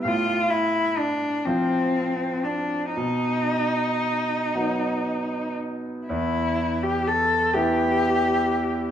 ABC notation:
X:1
M:6/8
L:1/16
Q:3/8=41
K:Bphr
V:1 name="Cello"
=F2 E2 D2 C4 D2 | ^D8- D2 z2 | E3 G A2 G6 |]
V:2 name="Grand piano" clef=bass
A,,6 [=F,C=F]6 | B,,6 [F,B,^D]6 | E,,6 [E,B,E]6 |]